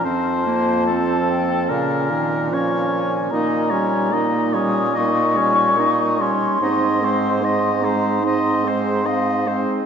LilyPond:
<<
  \new Staff \with { instrumentName = "Flute" } { \time 4/4 \key aes \major \tempo 4 = 73 a''4. g''8 f''4 r8 aes''8 | bes''4. ees'''8 des'''4. c'''8~ | c'''4. bes''8 c'''4 f''8 r8 | }
  \new Staff \with { instrumentName = "Oboe" } { \time 4/4 \key aes \major c''4 a'4 bes'4 des''4 | ees''8 des''8 ees''8 des''8 ees''8 des''8 ees''8 des''8 | ees''8 c''8 ees''8 c''8 ees''8 c''8 ees''8 c''8 | }
  \new Staff \with { instrumentName = "Clarinet" } { \time 4/4 \key aes \major c'8 bes8 c'4 des'4 des'4 | ees'8 des'8 ees'8 des'8 ees'8 des'8 ees'8 des'8 | ees'8 c'8 ees'8 c'8 ees'8 c'8 ees'8 c'8 | }
  \new Staff \with { instrumentName = "French horn" } { \clef bass \time 4/4 \key aes \major f2 des8 ees8 f4 | bes8 g8 bes8 g8 bes8 g8 bes8 g8 | c'8 aes8 c'8 aes8 c'8 aes8 c'8 aes8 | }
  \new Staff \with { instrumentName = "Bassoon" } { \clef bass \time 4/4 \key aes \major f,2 bes,2 | bes,1 | aes,2.~ aes,8 r8 | }
>>